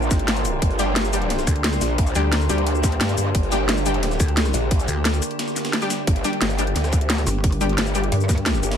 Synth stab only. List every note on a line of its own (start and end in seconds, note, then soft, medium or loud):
0.79 0.84 G3 loud
0.79 0.84 D4 medium
0.79 0.84 G4 loud
1.13 1.18 G3 medium
1.13 1.18 D4 medium
1.13 1.18 G4 medium
2.15 2.20 G3 loud
2.15 2.20 D4 medium
2.15 2.20 G4 loud
2.49 2.57 G3 medium
2.49 2.57 D4 medium
2.49 2.57 G4 loud
3.52 3.56 G3 loud
3.52 3.56 D4 medium
3.52 3.56 G4 loud
3.86 3.90 G3 medium
3.86 3.90 D4 medium
3.86 3.90 G4 medium
5.82 5.89 G3 medium
5.82 5.89 D4 medium
5.82 5.89 G4 loud
6.24 6.29 G3 loud
6.24 6.29 D4 medium
6.24 6.29 G4 loud
6.59 6.63 G3 medium
6.59 6.63 D4 medium
6.59 6.63 G4 medium
7.61 7.65 G3 loud
7.61 7.65 D4 medium
7.61 7.65 G4 loud
7.95 8.02 G3 medium
7.95 8.02 D4 medium
7.95 8.02 G4 loud